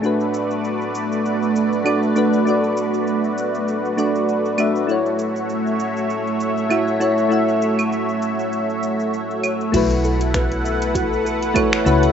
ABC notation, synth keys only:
X:1
M:4/4
L:1/8
Q:"Swing 16ths" 1/4=99
K:Dlyd
V:1 name="Synth keys"
[A,DFB]6 [A,DFd] [A,DFB] | [A,DFd]4- [A,DFd] [A,DFd]2 [A,DFe] | [A,EFc]6 [A,EFe] [A,EFc] | [A,EFe]4- [A,EFe] z3 |
[A,EFB]6 [A,EFc] [A,EFB] |]